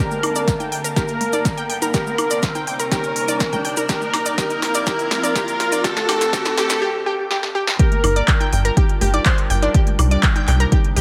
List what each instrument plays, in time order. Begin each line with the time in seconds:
Already playing: ambient pad D3 F5 A5, riser
0.00 ambient pad G2 A#3, analog synth lead A#4
0.11 low conga, cabasa
0.23 open hi-hat, high conga, high woodblock
0.36 synth pluck D5, closed hi-hat, cabasa
0.48 kick, snare, closed hi-hat, cabasa
0.60 synth pluck G5, closed hi-hat, high conga, cabasa
0.72 synth pluck G5, open hi-hat
0.84 synth pluck A#4, closed hi-hat, cabasa
0.96 synth pluck G4, analog synth lead A#4, kick, snare, closed hi-hat, high conga, cabasa
1.08 closed hi-hat, cabasa
1.21 open hi-hat, low conga
1.33 synth pluck D5, closed hi-hat, high conga, cabasa
1.45 kick, snare, closed hi-hat, cabasa
1.58 synth pluck G5, closed hi-hat, cabasa
1.70 synth pluck G5, open hi-hat
1.82 synth pluck A#4, closed hi-hat, high conga, cabasa
1.94 ambient pad C3 G3 D#4 A#4 D5, synth pluck G4, analog synth lead A#4, kick, snare, closed hi-hat, cabasa
2.06 low conga, cabasa
2.18 open hi-hat, high conga, high woodblock
2.31 synth pluck D5, closed hi-hat, cabasa
2.43 kick, snare, closed hi-hat, cabasa
2.55 synth pluck G5, closed hi-hat, high conga, cabasa
2.67 synth pluck G5, open hi-hat
2.80 synth pluck A#4, closed hi-hat, cabasa
2.91 synth pluck G4, analog synth lead A#4, kick, snare, closed hi-hat, high conga, cabasa
3.04 closed hi-hat, cabasa
3.16 open hi-hat
3.28 synth pluck D5, closed hi-hat, high conga, cabasa
3.40 kick, snare, closed hi-hat, cabasa
3.53 synth pluck G5, kick, closed hi-hat, low conga, cabasa
3.65 synth pluck G5, open hi-hat
3.77 synth pluck A#4, closed hi-hat, high conga, cabasa
3.89 ambient pad A#2 F3 C4 F5, synth pluck G4, analog synth lead A#4, kick, snare, closed hi-hat, cabasa
4.01 low conga, cabasa
4.13 snare, open hi-hat, high conga, high woodblock
4.26 synth pluck D5, closed hi-hat, cabasa
4.38 synth pluck G4, analog synth lead A#4, kick, snare, closed hi-hat, cabasa
4.50 closed hi-hat, high conga, cabasa
4.62 snare, open hi-hat
4.74 synth pluck D5, closed hi-hat, cabasa
4.86 synth pluck G4, analog synth lead A#4, kick, snare, closed hi-hat, high conga, cabasa
4.99 closed hi-hat, cabasa
5.11 snare, open hi-hat, low conga
5.23 synth pluck D5, closed hi-hat, high conga, cabasa
5.35 synth pluck G4, analog synth lead A#4, kick, snare, closed hi-hat, cabasa
5.48 closed hi-hat, cabasa
5.60 snare, open hi-hat
5.72 synth pluck D5, closed hi-hat, high conga, cabasa
5.84 synth pluck G4, analog synth lead A4, kick, snare, closed hi-hat, cabasa
5.97 snare, closed hi-hat, low conga, cabasa
6.09 synth pluck G4, analog synth lead A4, snare, open hi-hat, high conga, high woodblock
6.21 snare, closed hi-hat, cabasa
6.33 synth pluck G4, analog synth lead A4, kick, snare, closed hi-hat, cabasa
6.45 snare, closed hi-hat, high conga, cabasa
6.57 synth pluck G4, analog synth lead A4, snare, open hi-hat
6.70 snare, closed hi-hat, cabasa
6.82 synth pluck G4
7.06 synth pluck G4
7.31 synth pluck G4, snare
7.43 snare
7.55 synth pluck G4
7.67 snare
7.79 ambient pad G3 D4 F4 A#4 A5, synth pluck G4 G5, analog synth lead A#4, kick, closed hi-hat
7.92 closed hi-hat, low conga
8.04 analog synth bass G1, open hi-hat, high conga, high woodblock
8.16 synth pluck D5 D6, closed hi-hat
8.28 kick, clap, closed hi-hat
8.40 synth pluck G5 G6, closed hi-hat, high conga
8.52 analog synth bass G1, synth pluck G5 G6, open hi-hat
8.65 synth pluck A#4 A#5, closed hi-hat
8.77 synth pluck G4 G5, kick, closed hi-hat, high conga
8.89 closed hi-hat
9.01 analog synth bass G1, synth pluck G4 G5, open hi-hat, low conga
9.14 synth pluck D5 D6, closed hi-hat, high conga
9.26 synth pluck C5 C6, kick, clap, closed hi-hat
9.38 closed hi-hat
9.50 analog synth bass G1, synth pluck G5 G6, open hi-hat
9.62 synth pluck D4 D5, closed hi-hat, high conga
9.74 ambient pad C3 A#3 D#4, synth pluck G4 G5, kick, closed hi-hat
9.87 closed hi-hat, low conga
9.99 analog synth bass C2, open hi-hat, high conga, high woodblock
10.11 synth pluck D5 D6, closed hi-hat
10.23 kick, clap, closed hi-hat
10.36 synth pluck G5 G6, closed hi-hat, high conga
10.48 analog synth bass C2, synth pluck G5 G6, clap, open hi-hat
10.60 synth pluck A#4 A#5, closed hi-hat
10.72 synth pluck G4 G5, kick, closed hi-hat, high conga
10.84 closed hi-hat
10.96 analog synth bass C2, synth pluck G4 G5, open hi-hat